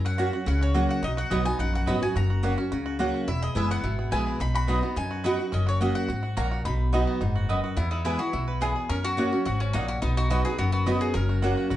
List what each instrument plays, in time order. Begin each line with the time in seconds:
Already playing: upright bass F#2, steel-string acoustic guitar F#2, five-string banjo F#3
0.05 five-string banjo C#4, mandolin F#5
0.18 steel-string acoustic guitar F#3 A#3 C#4 F#4, mandolin A#3 F#4 C#5 F#5, five-string banjo F#4
0.33 steel-string acoustic guitar C#4 F#4, five-string banjo F#4
0.46 upright bass C#2, steel-string acoustic guitar C#3, five-string banjo C#4, mandolin F#5
0.61 five-string banjo F#4, mandolin C#5
0.74 steel-string acoustic guitar F#3 A#3 C#4 F#4, mandolin A#3 F#4 C#5 F#5, five-string banjo F#4
0.89 five-string banjo F#4, mandolin F#5
1.03 upright bass B1, steel-string acoustic guitar B2, five-string banjo D#4, mandolin D#5
1.17 five-string banjo F#4, mandolin F#5
1.30 upright bass B1, steel-string acoustic guitar F#3 B3 D#4 F#4, mandolin B3 F#4 D#5 F#5 B5, five-string banjo D#4
1.45 five-string banjo B3, steel-string acoustic guitar D#4 F#4, mandolin G#5
1.59 upright bass A#1, steel-string acoustic guitar F#2, five-string banjo D#4, mandolin F#5
1.74 five-string banjo F#4, mandolin F#5
1.86 upright bass G#1, steel-string acoustic guitar F#3 B3 D#4 F#4, mandolin B3 F#4 D#5 B5, five-string banjo B4
2.02 steel-string acoustic guitar D#4 F#4, five-string banjo F#4, mandolin G#5
2.15 upright bass F#1, steel-string acoustic guitar F#2, five-string banjo F#4, mandolin A#5
2.30 five-string banjo F#4
2.43 steel-string acoustic guitar F#3 A#3 C#4 F#4, mandolin A#3 F#4 C#5 F#5, five-string banjo F#4
2.58 five-string banjo C#4, steel-string acoustic guitar C#4 F#4
2.72 upright bass C#2, steel-string acoustic guitar C#3, five-string banjo F#4
2.86 five-string banjo F#4
2.99 steel-string acoustic guitar F#3 A#3 C#4 F#4, mandolin A#3 F#4 C#5 F#5, five-string banjo F#4
3.14 five-string banjo F#4
3.28 upright bass E1, steel-string acoustic guitar E2, five-string banjo E4, mandolin E5
3.42 five-string banjo G#4, mandolin D#5
3.55 upright bass F#1, steel-string acoustic guitar E3 G#3 B3 E4, mandolin B3 E4 B4 E5 G#5, five-string banjo E4
3.71 five-string banjo B3, mandolin F#5
3.83 upright bass G#1, steel-string acoustic guitar B2, five-string banjo E4
3.99 five-string banjo G#4
4.11 upright bass A#1, steel-string acoustic guitar E3 G#3 B3 E4, mandolin B3 E4 B4 G#5, five-string banjo B4
4.27 five-string banjo G#4
4.40 upright bass B1, steel-string acoustic guitar B2, five-string banjo D#4, mandolin B5
4.55 five-string banjo F#4, mandolin B5
4.67 steel-string acoustic guitar F#3 B3 D#4 F#4, mandolin B3 F#4 D#5 B5, five-string banjo D#4
4.82 five-string banjo B3, steel-string acoustic guitar D#4 F#4
4.96 steel-string acoustic guitar F#2, upright bass F#2, five-string banjo D#4, mandolin G#5
5.11 five-string banjo F#4
5.24 steel-string acoustic guitar F#3 B3 D#4 F#4, mandolin B3 F#4 D#5 F#5 B5, five-string banjo B4
5.39 steel-string acoustic guitar D#4 F#4, five-string banjo F#4
5.52 upright bass F#1, steel-string acoustic guitar F#2, five-string banjo C#4, mandolin D#5
5.67 five-string banjo F#4, mandolin C#5
5.80 steel-string acoustic guitar F#3 A#3 C#4 F#4, mandolin A#3 F#4 C#5 D#5 F#5, five-string banjo F#4
5.95 five-string banjo F#4, mandolin F#5
6.09 upright bass G#1, steel-string acoustic guitar G#2, five-string banjo F#4
6.23 five-string banjo F#4
6.37 upright bass A#1, steel-string acoustic guitar A#2, mandolin A#3 F#4 C#5 F#5 A#5, five-string banjo C#4
6.51 five-string banjo F#4
6.65 upright bass B1, steel-string acoustic guitar B2, five-string banjo D#4, mandolin B5
6.92 steel-string acoustic guitar F#3 B3 D#4 F#4, mandolin B3 F#4 D#5 B5, five-string banjo D#4
7.07 five-string banjo B3
7.21 upright bass F#1, steel-string acoustic guitar G#2, five-string banjo D#4
7.36 five-string banjo F#4
7.49 steel-string acoustic guitar F#2, mandolin B3 F#4 D#5 B5, five-string banjo B4
7.64 five-string banjo F#4
7.77 upright bass E2, steel-string acoustic guitar E2, five-string banjo B3, mandolin E4
7.91 mandolin D#4, five-string banjo E4
8.05 steel-string acoustic guitar E3 G#3 B3 E4, mandolin B3 E4 B4 G#5, five-string banjo B4
8.19 steel-string acoustic guitar B3 E4, mandolin F#4, five-string banjo G#4
8.33 upright bass B1, steel-string acoustic guitar B2, five-string banjo E4
8.48 five-string banjo B4
8.61 steel-string acoustic guitar E2, mandolin B3 E4 G#4 B4 G#5, five-string banjo B3
8.76 five-string banjo G#4
8.89 upright bass F#2, steel-string acoustic guitar F#2, five-string banjo C#4, mandolin A#4
9.04 five-string banjo F#4, mandolin F#4
9.17 steel-string acoustic guitar F#3 A#3 C#4 F#4, mandolin A#3 F#4 C#5 F#5, five-string banjo F#4
9.32 five-string banjo C#4, steel-string acoustic guitar C#4 F#4
9.45 upright bass G#1, steel-string acoustic guitar G#2, mandolin F#4, five-string banjo F#4
9.60 mandolin C#4, five-string banjo C#4
9.73 upright bass A#1, steel-string acoustic guitar A#2, mandolin A#3 D#4 F#4 C#5 F#5, five-string banjo F#4
9.88 five-string banjo C#4, mandolin F#4
10.02 upright bass B1, steel-string acoustic guitar B2, five-string banjo B3, mandolin D#4
10.17 five-string banjo D#4, mandolin F#4
10.30 steel-string acoustic guitar F#3 B3 D#4 F#4, mandolin B3 F#4 D#5 B5, five-string banjo F#4
10.45 steel-string acoustic guitar D#4 F#4, mandolin G#4, five-string banjo B4
10.58 upright bass F#1, steel-string acoustic guitar F#2, five-string banjo B3, mandolin F#4
10.72 mandolin F#4, five-string banjo B4
10.86 steel-string acoustic guitar F#3 B3 D#4 F#4, mandolin B3 F#4 D#5 B5, five-string banjo B3
11.01 five-string banjo F#4, mandolin G#4
11.14 upright bass F#1, steel-string acoustic guitar F#2, five-string banjo C#4, mandolin A#4
11.29 five-string banjo F#4
11.42 steel-string acoustic guitar F#3 A#3 C#4 F#4, mandolin A#3 F#4 C#5 F#5, five-string banjo F#4
11.57 five-string banjo F#4
11.70 upright bass G#1, steel-string acoustic guitar C#3, five-string banjo F#4